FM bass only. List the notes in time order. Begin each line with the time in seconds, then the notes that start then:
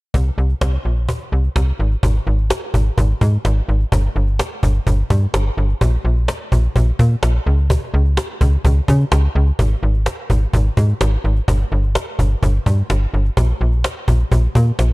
0.14 C2
0.38 C2
0.61 C2
0.85 A#1
1.32 C2
1.56 C2
1.80 G#1
2.03 G#1
2.27 G#1
2.74 G#1
2.98 G#1
3.21 G#2
3.45 G#1
3.69 G#1
3.92 G1
4.16 G1
4.63 G1
4.87 G1
5.10 G2
5.34 G1
5.57 G1
5.81 A#1
6.05 A#1
6.52 A#1
6.76 A#1
6.99 A#2
7.23 A#1
7.46 C#2
7.94 C#2
8.41 C#2
8.65 C#2
8.88 C#3
9.12 C#2
9.35 C#2
9.59 G#1
9.83 G#1
10.30 G#1
10.53 G#1
10.77 G#2
11.01 G#1
11.24 G#1
11.48 G1
11.72 G1
12.19 G1
12.43 G1
12.66 G2
12.90 G1
13.14 G1
13.37 A#1
13.61 A#1
14.08 A#1
14.32 A#1
14.55 A#2
14.79 A#1